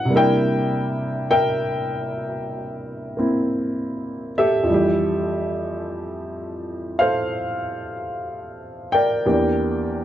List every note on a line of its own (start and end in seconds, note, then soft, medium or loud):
0.00 0.11 C#3 soft
0.00 0.10 C#4 soft
0.00 0.12 F#4 medium
0.00 0.11 G4 soft
0.00 0.10 F#5 medium
0.05 4.66 C3 soft
0.05 4.67 G3 soft
0.11 3.15 A#3 soft
0.11 4.70 D4 soft
0.16 3.18 E4 medium
0.16 1.29 A#4 medium
0.16 1.30 E5 medium
0.16 1.29 G5 medium
1.31 4.31 A#4 medium
1.31 4.32 E5 medium
1.31 4.31 G5 medium
3.17 4.68 A#3 soft
3.17 4.68 C4 soft
3.17 4.69 E4 soft
4.38 4.73 G4 medium
4.38 6.96 A4 medium
4.38 6.95 E5 medium
4.63 9.23 F2 soft
4.63 9.24 F3 soft
4.69 9.24 E3 soft
4.69 9.26 G3 soft
4.74 9.25 G4 medium
6.99 9.24 A4 medium
6.99 9.23 C5 medium
6.99 8.86 F5 medium
8.92 10.05 A#4 medium
8.92 10.05 D5 medium
8.92 10.05 G5 medium
9.26 10.05 E2 soft
9.26 10.05 E3 soft
9.26 10.05 A#3 soft
9.26 10.05 D4 soft
9.26 10.05 G4 medium